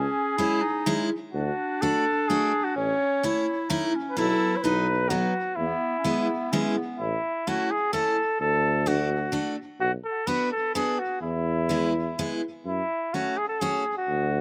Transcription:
Already playing: clarinet C#4, flugelhorn G#4
0.38 steel-string acoustic guitar G#3 C#4 E4, clarinet E4
0.62 clarinet D#4
0.86 steel-string acoustic guitar G#3 C#4 E4
1.32 tuba D2, clarinet D4, flugelhorn F#4
1.82 steel-string acoustic guitar A3 D4 F#4, flugelhorn A4
2.29 steel-string acoustic guitar A3 D4 F#4, flugelhorn G#4
2.64 flugelhorn F#4
2.75 tuba A1, clarinet C#4, flugelhorn C#5
3.23 steel-string acoustic guitar A3 C#4 E4, clarinet E4
3.70 steel-string acoustic guitar A3 C#4 E4, clarinet D#4
3.95 clarinet C#4
4.10 flugelhorn B4
4.17 tuba B1, steel-string acoustic guitar F#3 B3 E4, clarinet E4, flugelhorn A4
4.56 flugelhorn C#5
4.62 tuba B1, steel-string acoustic guitar F#3 B3 D#4, clarinet D#4, flugelhorn B4
5.09 steel-string acoustic guitar F#3 B3 D#4, flugelhorn F#4
5.56 tuba E2, clarinet B3, flugelhorn E4
5.99 clarinet C#4
6.04 steel-string acoustic guitar G#3 B3 E4, clarinet B3
6.52 steel-string acoustic guitar G#3 B3 E4, clarinet C#4
6.77 clarinet B3
6.99 tuba A1, flugelhorn E4
7.47 steel-string acoustic guitar A3 C#4 E4, flugelhorn F#4
7.71 flugelhorn G#4
7.93 steel-string acoustic guitar A3 C#4 E4, flugelhorn A4
8.40 tuba D2, flugelhorn A4
8.86 steel-string acoustic guitar A3 D4 F#4, flugelhorn F#4
9.32 steel-string acoustic guitar A3 D4 F#4
9.79 tuba B1, flugelhorn F#4
10.05 flugelhorn A4
10.27 steel-string acoustic guitar B3 D4 F#4, flugelhorn B4
10.52 flugelhorn A4
10.75 steel-string acoustic guitar B3 D4 F#4, flugelhorn G#4
10.99 flugelhorn F#4
11.21 tuba E2, flugelhorn E4
11.69 steel-string acoustic guitar G#3 B3 E4
12.19 steel-string acoustic guitar G#3 B3 E4
12.65 tuba F#2, flugelhorn E4
13.14 steel-string acoustic guitar A3 C#4 F#4, flugelhorn F#4
13.37 flugelhorn G#4
13.49 flugelhorn A4
13.61 steel-string acoustic guitar A3 C#4 F#4, flugelhorn G#4
13.98 flugelhorn F#4
14.08 tuba D2

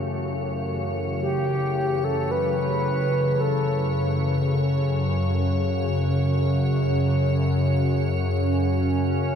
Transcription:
Already playing: synth drone F#2 C#3, analog synth pad C#3 E3 A3, ambient pad C#5
1.21 soft synth lead G4
2.04 soft synth lead A4
2.31 soft synth lead B4
3.40 soft synth lead A4
4.52 analog synth pad F#2
7.76 analog synth pad C#4

